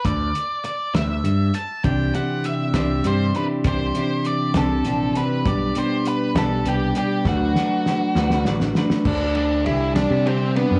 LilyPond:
<<
  \new Staff \with { instrumentName = "Lead electric guitar" } { \time 6/8 \key d \mixolydian \tempo 4. = 67 d''4 d''8 e''4 a''8 | g''8 fis''8 e''4 c''8 b'8 | c''4 d''8 a'4 b'8 | d''8 c''8 b'8 a'8 g'8 g'8 |
fis'2 r4 | d'8 d'8 e'8 d'8 c'8 b8 | }
  \new Staff \with { instrumentName = "Clean electric guitar" } { \time 6/8 \key d \mixolydian r2. | <c e c' d' g'>8 <c e c' d' g'>4 <c e c' d' g'>8 <c e c' d' g'>8 <c e c' d' g'>8 | <c e c' d' g'>8 <c e c' d' g'>4 <c e c' d' g'>8 <c e c' d' g'>8 <c e c' d' g'>8 | <b, g b d' g'>8 <b, g b d' g'>4 <b, g b d' g'>8 <b, g b d' g'>8 <b, g b d' g'>8 |
<d fis a d' fis' b'>8 <d fis a d' fis' b'>4 <d fis a d' fis' b'>8 <d fis a d' fis' b'>8 <d fis a d' fis' b'>8 | d8 a'8 g'8 g8 g'8 d'8 | }
  \new Staff \with { instrumentName = "Picked electric bass" } { \clef bass \time 6/8 \key d \mixolydian d,8 r4 d,8 g,8 r8 | c,8 r4 c,8 g,8 r8 | c,8 r4 c,8 bes,,8 r8 | b,,8 r4 b,,8 c,8 r8 |
d,8 r4 d,8 a,,8 r8 | d,4 c,8. c4 fis,16 | }
  \new DrumStaff \with { instrumentName = "Drums" } \drummode { \time 6/8 <hh bd>8 hh8 hh8 <hh sn>8 hh8 hh8 | <hh bd>8 hh8 hh8 <hh sn>8 hh8 hh8 | <hh bd>8 hh8 hh8 <hh sn>8 hh8 hh8 | <hh bd>8 hh8 hh8 <hh sn>8 hh8 hh8 |
<bd sn>8 sn8 sn8 sn16 sn16 sn16 sn16 sn16 sn16 | <cymc bd>8 cymr8 cymr8 <cymr sn>8 cymr8 cymr8 | }
>>